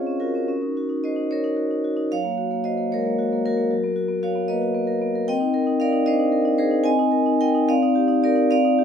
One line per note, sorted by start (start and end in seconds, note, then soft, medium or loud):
0.00 0.52 C4 soft
0.00 0.07 C#4 soft
0.00 0.20 F4 soft
0.00 0.18 G#4 medium
0.00 0.51 C5 medium
0.00 0.51 C#5 medium
0.00 0.51 D#5 medium
0.00 0.51 F5 medium
0.07 0.29 C#4 medium
0.20 0.43 F4 soft
0.20 0.76 F#4 medium
0.20 1.02 A#4 medium
0.35 0.47 C#4 soft
0.48 1.30 C#4 medium
0.62 0.84 D#4 soft
0.77 0.98 F#4 soft
0.89 1.11 D#4 soft
1.04 1.26 F#4 soft
1.04 1.30 C5 medium
1.04 1.31 D#5 medium
1.16 1.39 D#4 soft
1.31 1.45 C#4 soft
1.31 2.08 A#4 medium
1.31 2.11 C#5 medium
1.44 1.66 D#4 medium
1.57 1.79 F#4 soft
1.71 1.92 D#4 medium
1.84 2.06 F#4 soft
1.97 2.11 D#4 medium
2.12 3.68 F#3 medium
2.12 2.62 C#5 medium
2.12 2.65 F5 loud
2.24 2.45 A#3 soft
2.38 2.59 F#4 medium
2.51 2.72 A#3 soft
2.64 2.86 F#4 soft
2.64 2.90 C5 medium
2.64 2.91 D#5 medium
2.77 2.99 A#3 medium
2.92 3.05 G#3 medium
2.92 3.42 A#4 medium
2.92 3.45 C#5 medium
3.05 3.27 A#3 medium
3.19 3.40 F#4 medium
3.33 3.53 A#3 medium
3.46 3.95 F#4 medium
3.46 4.24 A#4 medium
3.57 3.71 A#3 medium
3.71 5.24 F#3 medium
3.84 4.05 B3 soft
3.96 4.18 F#4 medium
4.09 4.30 B3 medium
4.23 4.44 F#4 medium
4.23 4.48 C#5 medium
4.23 4.50 F5 medium
4.35 4.57 B3 medium
4.48 4.63 A#3 medium
4.48 5.24 B4 medium
4.48 5.28 D#5 medium
4.62 4.83 F#4 medium
4.75 4.96 B3 medium
4.87 5.09 A#4 medium
5.02 5.23 B3 medium
5.15 5.28 A#4 medium
5.28 6.83 C4 medium
5.28 5.78 D#5 medium
5.28 5.81 G5 loud
5.40 5.62 D#4 medium
5.54 5.76 A#4 medium
5.67 5.89 D#4 medium
5.80 6.02 A#4 medium
5.80 6.06 D5 medium
5.80 6.07 F5 loud
5.92 6.15 D#4 medium
6.06 6.20 D4 medium
6.06 6.57 C5 medium
6.06 6.60 D#5 loud
6.19 6.42 D#4 medium
6.32 6.54 A#4 medium
6.45 6.68 D#4 medium
6.58 6.85 G#4 medium
6.58 6.81 A#4 medium
6.58 6.86 C5 loud
6.71 6.86 D#4 medium
6.84 7.66 C4 medium
6.84 7.37 D#5 loud
6.84 7.40 G#5 loud
6.99 7.22 D#4 medium
7.12 7.35 A#4 medium
7.26 7.49 D#4 medium
7.41 7.64 A#4 medium
7.41 7.67 D#5 medium
7.41 7.69 G5 loud
7.55 7.69 D#4 medium
7.69 8.48 C4 medium
7.69 8.20 D5 medium
7.69 8.24 F5 loud
7.83 8.05 D#4 medium
7.95 8.18 G4 medium
8.08 8.31 D#4 medium
8.23 8.46 G4 medium
8.23 8.50 A#4 medium
8.23 8.51 D5 loud
8.36 8.50 D#4 medium
8.50 8.84 C4 medium
8.50 8.84 D5 loud
8.50 8.84 F5 loud
8.65 8.84 D#4 medium
8.79 8.84 G4 medium